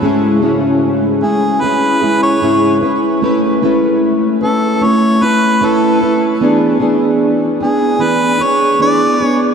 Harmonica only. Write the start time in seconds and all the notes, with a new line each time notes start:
1.23 G#4
1.61 B4
2.23 C#5
4.43 A4
4.83 C#5
5.24 B4
5.65 A4
7.62 G#4
8.03 B4
8.42 C#5
8.82 D5
9.23 C#5